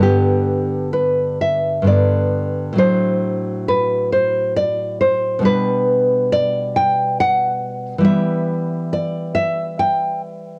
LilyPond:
\new Staff \with { instrumentName = "Nylon-string guitar" } { \time 3/4 \key g \major \tempo 4 = 68 << { g'4 b'8 e''8 d''4 | c''4 b'8 c''8 d''8 c''8 | b'4 d''8 g''8 fis''4 | e''4 d''8 e''8 g''8 r8 | } \\ { <g, d b>2 <g, d b>4 | <a, fis d'>2. | <b, g d'>2. | <e g b>2. | } >> }